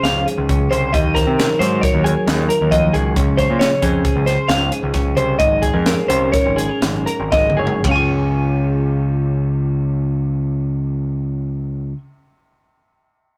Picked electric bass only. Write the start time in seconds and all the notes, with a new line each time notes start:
0.03 C#2
0.38 C#2
0.71 C2
0.94 D#2
1.27 C3
1.60 G#2
1.94 D#2
2.27 D#2
2.61 D#2
2.95 C#2
3.16 C#2
3.50 A#2
3.83 F2
4.16 C#2
4.49 C#2
4.83 C#2
5.17 C2
5.40 G#1
5.74 F2
6.10 C2
6.46 G#1
6.82 G#1
7.20 G#1
7.58 F#1
7.84 C#2